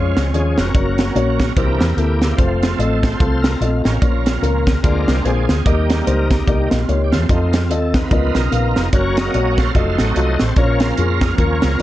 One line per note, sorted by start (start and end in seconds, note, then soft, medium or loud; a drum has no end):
0.00 0.13 F2 medium
0.00 0.70 F3 medium
0.00 0.19 G#3 medium
0.00 0.54 G#3 medium
0.00 0.19 C#4 medium
0.00 0.58 C#4 medium
0.00 0.18 F4 medium
0.00 0.19 F4 medium
0.00 0.19 C#5 medium
0.16 0.31 C#2 medium
0.16 0.25 A#4 medium
0.16 snare loud
0.16 closed hi-hat medium
0.33 0.54 D#2 medium
0.33 0.60 G#3 medium
0.33 0.60 C#4 medium
0.33 0.60 F4 medium
0.33 0.59 G#4 medium
0.33 0.60 C#5 medium
0.33 closed hi-hat medium
0.58 0.72 F1 medium
0.58 0.74 C#4 medium
0.58 1.53 F#4 medium
0.58 1.52 A#4 medium
0.58 snare medium
0.58 closed hi-hat medium
0.74 1.09 F#1 medium
0.74 1.52 F#3 soft
0.74 1.01 A#3 medium
0.74 1.53 A#3 soft
0.74 1.01 C#4 medium
0.74 1.53 C#4 medium
0.74 1.01 F#4 medium
0.74 1.01 C#5 medium
0.74 kick loud
0.74 closed hi-hat medium
0.98 snare loud
0.98 closed hi-hat medium
1.15 1.50 A#1 medium
1.15 1.42 A#3 medium
1.15 1.42 C#4 medium
1.15 1.42 F#4 medium
1.15 1.42 C#5 medium
1.15 closed hi-hat medium
1.40 kick medium
1.40 snare loud
1.40 closed hi-hat medium
1.56 1.77 C2 medium
1.56 2.18 C3 medium
1.56 1.86 E3 medium
1.56 1.83 A#3 medium
1.56 1.86 A#3 soft
1.56 1.87 D4 medium
1.56 1.83 E4 medium
1.56 1.97 E4 medium
1.56 1.83 G4 medium
1.56 1.96 G4 medium
1.56 1.98 A#4 medium
1.56 1.83 C5 medium
1.56 kick loud
1.56 closed hi-hat medium
1.81 1.95 E2 medium
1.81 snare loud
1.81 closed hi-hat medium
1.97 2.32 D2 loud
1.97 2.24 A#3 medium
1.97 2.36 A#3 soft
1.97 2.24 E4 medium
1.97 2.36 E4 medium
1.97 2.39 G4 medium
1.97 2.24 G4 medium
1.97 2.24 A4 medium
1.97 closed hi-hat medium
2.22 snare medium
2.22 closed hi-hat medium
2.36 2.73 F1 medium
2.36 2.99 F3 medium
2.36 3.16 A3 medium
2.36 2.65 A3 medium
2.36 3.00 C4 medium
2.36 2.65 C4 medium
2.36 2.80 F4 medium
2.36 2.65 F4 medium
2.36 2.65 C5 medium
2.36 kick medium
2.36 closed hi-hat medium
2.63 snare loud
2.63 closed hi-hat medium
2.79 3.14 A1 medium
2.79 3.06 A3 medium
2.79 3.06 C4 medium
2.79 3.06 F4 medium
2.79 3.03 A4 medium
2.79 3.06 D#5 medium
2.79 closed hi-hat medium
3.03 3.82 F4 medium
3.03 3.59 A4 medium
3.03 3.41 C5 medium
3.03 kick medium
3.03 snare loud
3.03 closed hi-hat medium
3.20 3.55 C2 medium
3.20 3.46 A3 medium
3.20 3.47 C4 medium
3.20 3.47 F4 medium
3.20 3.47 A4 medium
3.20 kick loud
3.20 closed hi-hat medium
3.42 3.61 A#4 medium
3.42 snare loud
3.42 closed hi-hat medium
3.60 3.81 A#1 medium
3.60 3.87 A3 medium
3.60 3.87 C4 medium
3.60 3.88 F4 medium
3.60 3.71 A4 medium
3.60 3.88 D#5 medium
3.60 closed hi-hat medium
3.84 4.00 A1 medium
3.84 4.02 C#4 medium
3.84 4.80 F4 medium
3.84 4.79 A#4 loud
3.84 snare medium
3.84 closed hi-hat medium
4.02 4.37 A#1 medium
4.02 4.63 A#2 medium
4.02 4.64 F3 soft
4.02 4.28 A#3 medium
4.02 4.64 A#3 soft
4.02 4.28 C#4 medium
4.02 4.64 C#4 soft
4.02 4.28 F4 medium
4.02 4.29 C#5 medium
4.02 kick loud
4.02 closed hi-hat medium
4.26 snare loud
4.26 closed hi-hat medium
4.42 4.78 C#2 medium
4.42 4.69 A#3 medium
4.42 4.69 C#4 medium
4.42 4.69 F4 medium
4.42 4.69 A#4 medium
4.42 closed hi-hat medium
4.67 kick medium
4.67 snare medium
4.67 closed hi-hat medium
4.82 5.05 D2 medium
4.82 5.45 D3 medium
4.82 5.45 G#3 soft
4.82 5.10 A#3 medium
4.82 5.45 C4 soft
4.82 5.46 D4 medium
4.82 5.10 F4 medium
4.82 5.25 F4 medium
4.82 5.10 G#4 medium
4.82 5.25 A#4 medium
4.82 5.11 D5 medium
4.82 kick loud
4.82 closed hi-hat medium
5.08 5.22 C2 medium
5.08 snare loud
5.08 closed hi-hat medium
5.24 5.45 A#1 medium
5.24 5.51 A#3 medium
5.24 5.51 F4 medium
5.24 5.64 F4 medium
5.24 5.67 G#4 medium
5.24 5.52 G#4 medium
5.24 5.52 C5 medium
5.24 closed hi-hat medium
5.49 5.63 D2 medium
5.49 snare medium
5.49 closed hi-hat medium
5.65 6.01 D#2 loud
5.65 6.27 D#3 medium
5.65 6.28 G3 soft
5.65 5.92 A#3 medium
5.65 6.31 A#3 medium
5.65 5.92 D#4 medium
5.65 6.31 D#4 medium
5.65 6.08 G4 medium
5.65 5.92 G4 medium
5.65 5.93 D#5 medium
5.65 kick medium
5.65 closed hi-hat medium
5.90 snare loud
5.90 closed hi-hat medium
6.05 6.42 C#2 medium
6.05 6.33 A#3 medium
6.05 6.33 D#4 medium
6.05 6.33 G4 medium
6.05 6.28 A#4 medium
6.05 6.33 C5 medium
6.05 closed hi-hat medium
6.31 6.46 A#3 medium
6.31 6.47 D#4 medium
6.31 6.69 G4 medium
6.31 kick medium
6.31 snare loud
6.31 closed hi-hat medium
6.47 6.68 C2 medium
6.47 6.69 G3 soft
6.47 6.69 A#3 soft
6.47 6.74 A#3 medium
6.47 6.74 D#4 medium
6.47 6.70 D#4 soft
6.47 6.74 G4 medium
6.47 6.74 D#5 medium
6.47 kick loud
6.47 closed hi-hat medium
6.70 6.86 A#1 medium
6.70 6.85 F4 medium
6.70 snare medium
6.70 closed hi-hat medium
6.86 7.14 C#2 medium
6.86 7.15 A#3 medium
6.86 7.15 D#4 medium
6.86 7.02 F4 medium
6.86 7.15 G4 medium
6.86 7.15 C#5 medium
6.86 closed hi-hat medium
7.04 7.13 G4 medium
7.12 7.27 E2 medium
7.12 7.28 A3 medium
7.12 7.28 C4 medium
7.12 7.72 F4 loud
7.12 snare medium
7.12 closed hi-hat medium
7.29 7.70 F2 loud
7.29 7.59 A3 soft
7.29 7.59 C4 soft
7.29 7.56 C4 medium
7.29 7.59 D#4 medium
7.29 7.56 F4 medium
7.29 7.56 A4 medium
7.29 7.56 D#5 medium
7.29 kick medium
7.29 closed hi-hat medium
7.53 snare loud
7.53 closed hi-hat medium
7.69 8.05 D#2 medium
7.69 7.97 C4 medium
7.69 7.97 F4 medium
7.69 7.95 A4 medium
7.69 7.97 A4 medium
7.69 7.97 D#5 medium
7.69 closed hi-hat medium
7.94 8.12 D#4 medium
7.94 8.35 F4 medium
7.94 8.37 B4 medium
7.94 kick medium
7.94 snare medium
7.94 closed hi-hat medium
8.11 8.32 C#2 loud
8.11 8.73 C#3 medium
8.11 8.41 F3 soft
8.11 8.41 A#3 soft
8.11 8.38 B3 medium
8.11 8.41 B3 soft
8.11 8.35 D#4 medium
8.11 8.38 F4 medium
8.11 8.38 A#4 medium
8.11 8.38 D#5 medium
8.11 kick loud
8.11 closed hi-hat medium
8.35 8.50 B1 medium
8.35 8.90 D#4 medium
8.35 8.90 F4 medium
8.35 8.89 A#4 medium
8.35 snare medium
8.35 closed hi-hat medium
8.52 8.73 A#1 medium
8.52 8.78 B3 medium
8.52 8.79 F4 soft
8.52 8.79 A#4 medium
8.52 8.79 F5 medium
8.52 closed hi-hat medium
8.76 8.91 F1 medium
8.76 snare medium
8.76 closed hi-hat medium
8.93 9.28 F#1 medium
8.93 9.71 F#3 soft
8.93 9.19 A#3 medium
8.93 9.72 A#3 soft
8.93 9.19 C#4 medium
8.93 9.72 C#4 medium
8.93 9.20 F#4 medium
8.93 9.17 F#4 medium
8.93 9.17 A#4 medium
8.93 9.20 C#5 medium
8.93 9.16 C#5 medium
8.93 kick medium
8.93 closed hi-hat medium
9.17 9.71 F#4 medium
9.17 9.72 A#4 medium
9.17 9.60 D#5 loud
9.17 snare loud
9.17 closed hi-hat medium
9.34 9.69 A#1 medium
9.34 9.61 A#3 medium
9.34 9.61 C#4 medium
9.34 9.61 F#4 medium
9.34 9.61 C#5 medium
9.34 closed hi-hat medium
9.58 10.00 A4 medium
9.58 10.37 C5 medium
9.58 10.01 F5 loud
9.58 kick medium
9.58 snare medium
9.58 closed hi-hat medium
9.75 9.96 F1 medium
9.75 10.38 F#3 soft
9.75 10.01 A3 medium
9.75 10.38 A3 soft
9.75 10.38 D#4 medium
9.75 10.01 F4 medium
9.75 10.02 F#4 medium
9.75 10.02 D#5 medium
9.75 kick medium
9.75 closed hi-hat medium
9.98 10.14 A1 medium
9.98 10.54 F#4 medium
9.98 10.54 A4 medium
9.98 10.42 D#5 medium
9.98 snare medium
9.98 closed hi-hat medium
10.16 10.37 C2 medium
10.16 10.42 A3 medium
10.16 10.42 F4 medium
10.16 10.43 F#4 medium
10.16 10.43 D#5 medium
10.16 closed hi-hat medium
10.39 10.55 A1 medium
10.39 10.56 C5 medium
10.39 snare medium
10.39 closed hi-hat medium
10.56 10.91 A#1 medium
10.56 11.18 A#2 soft
10.56 11.82 F3 soft
10.56 10.83 A#3 medium
10.56 11.82 A#3 soft
10.56 10.83 C#4 medium
10.56 11.82 C#4 medium
10.56 10.84 F4 medium
10.56 11.35 F4 medium
10.56 11.35 A#4 medium
10.56 10.80 C#5 medium
10.56 10.84 C#5 medium
10.56 kick loud
10.56 closed hi-hat medium
10.80 10.97 F5 medium
10.80 snare loud
10.80 closed hi-hat medium
10.97 11.33 F2 medium
10.97 11.24 A#3 medium
10.97 11.24 C#4 medium
10.97 11.24 F4 medium
10.97 11.24 G#4 medium
10.97 11.23 F5 medium
10.97 closed hi-hat medium
11.21 11.30 D#5 medium
11.21 kick medium
11.21 snare loud
11.21 closed hi-hat medium
11.38 11.59 D#2 medium
11.38 11.65 A#3 medium
11.38 11.65 C#4 medium
11.38 11.65 F4 medium
11.38 11.82 F4 medium
11.38 11.65 A#4 medium
11.38 11.82 A#4 medium
11.38 11.77 C#5 medium
11.38 kick medium
11.38 closed hi-hat medium
11.62 11.77 C#2 medium
11.62 snare loud
11.62 closed hi-hat medium